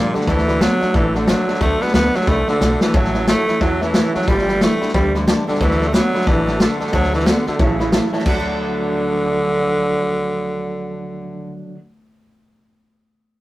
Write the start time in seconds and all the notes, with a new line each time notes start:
Already playing: G2 A#2 D3 F3 A#3 D4 G4
0.14 G2 D3 F3 A#3 D4 G4 D5 G5 A5, muted upright bass stroke, snare
0.21 snare
0.27 D2 D3 E3 F#3 A3 B3 F#4 D5 F#5 A5, kick, snare
0.38 snare
0.47 D3 A3 B3 F#4 D5 F#5 B5, snare
0.61 D3 F#3 A3 B3 F#4 D5 F#5 A5, snare, hi-hat pedal
0.81 D3 A3 B3 F#4 D5 F#5 A5, muted upright bass stroke, snare
0.94 A1 D3 E3 F#3 A3 B3 F#4 D5 F#5 A5, kick, snare
1.14 D3 A3 B3 F#4 D5 F#5 A5, snare
1.27 D3 F#3 A3 B3 F#4 D5 F#5 A5, snare, hi-hat pedal
1.48 D3 A3 B3 F#4 D5 F#5 A5, muted upright bass stroke, snare
1.54 snare
1.61 D2 D3 F#3 A3 B3 F#4 D5 F#5 A5, kick, snare
1.81 D3 A3 B3 F#4 D5 F#5 A5, snare
1.87 snare
1.94 D2 D3 F#3 A3 B3 F#4 F#5, snare, hi-hat pedal
2.14 D3 F#3 A3 B3 F#4 D5 F#5 A5, snare
2.21 snare
2.27 C2 D3 F#3 A3 B3 F#4 D5 F#5 B5, kick, snare
2.47 D3 A3 B3 F#4 D5 F#5 A5, muted upright bass stroke, snare
2.61 B1 D3 F#3 A3 B3 F#4 D5 F#5 A5, snare, hi-hat pedal
2.81 D3 E3 A3 B3 F#4 D5 F#5 A5, snare
2.94 A1 A2 E3 F#3 A3 C#4 E4 C#5 E5 A5, kick, snare
3.04 snare
3.14 A2 E3 A3 C#4 E4 C#5 E5 A5, snare
3.27 A2 F#3 A3 C#4 E4 C#5 E5 A5, snare, hi-hat pedal
3.48 A2 E3 A3 C#4 E4 C#5 E5 B5, muted upright bass stroke, snare
3.61 E2 A2 E3 F#3 A3 E4 C#5 E5 A5, kick, snare
3.81 A2 E3 A3 C#4 E4 C#5 E5 A5, snare
3.94 A2 E3 F#3 A3 C#4 E4 C#5 E5 A5, snare, hi-hat pedal
4.14 A2 E3 F#3 A3 C#4 E4 C#5 E5 A5, muted upright bass stroke, snare
4.21 snare
4.28 G1 G2 D3 E3 G3 B3 E4 D5 G5 B5, kick, snare
4.38 snare
4.48 G2 D3 E3 G3 B3 E4 D5 G5 B5, snare
4.61 G2 D3 E3 G3 A3 B3 E4 D5 G5 B5, snare, hi-hat pedal
4.81 G2 D3 E3 G3 B3 E4 D5 G5 B5, muted upright bass stroke, snare
4.88 snare
4.94 D2 G2 D3 E3 G3 B3 D5 G5 B5, kick, snare
5.15 G2 D3 E3 G3 B3 E4 D5 G5 B5, snare
5.27 G2 D3 E3 G3 B3 E4 D5 G5 A5, snare, hi-hat pedal
5.47 G2 D3 E3 G3 B3 E4 D5 G5 A5, muted upright bass stroke, snare
5.55 snare
5.61 D2 D3 E3 F#3 A3 B3 F#4 D5 F#5 A5, kick, snare
5.71 snare
5.80 D3 A3 B3 F#4 D5 F#5 A5, snare
5.88 A3
5.93 D3 F#3 A3 B3 F#4 D5 F#5 B5, snare, hi-hat pedal
6.13 D3 A3 B3 F#4 D5 F#5 B5, muted upright bass stroke, snare
6.21 snare
6.25 A1 D3 E3 F#3 A3 B3 F#4 D5 F#5 A5, kick, snare
6.46 D3 A3 B3 F#4 D5 F#5 A5, snare
6.60 D3 F#3 A3 B3 F#4 D5 F#5 A5, snare, hi-hat pedal
6.80 D3 A3 B3 F#4 D5 F#5 A5, muted upright bass stroke, snare
6.87 snare
6.93 D2 D3 F#3 A3 B3 F#4 D5 F#5 A5, kick, snare
7.03 snare
7.12 D3 E3 A3 B3 F#4 D5 F#5 A5, snare
7.20 snare
7.26 D3 F#3 A3 B3 F#4 D5 F#5 A5, snare, hi-hat pedal
7.46 D3 A3 B3 F#4 D5 F#5 A5, muted upright bass stroke, snare
7.59 A1 A2 C#3 E3 F#3 A3 C#4 E4 C#5 E5 A5, kick, snare
7.79 A2 E3 A3 C#4 E4 C#5 E5 B5, snare
7.92 A2 E3 F#3 A3 C#4 E4 C#5 E5 A5, snare, hi-hat pedal
8.13 A2 E3 A3 C#4 E4 C#5 E5 A5, muted upright bass stroke, snare
8.19 D3, snare
8.24 D2 D3 F#3 A3 D4 F#4 D5 F#5, kick, crash
8.28 B4 A5
8.34 B3
8.40 F#4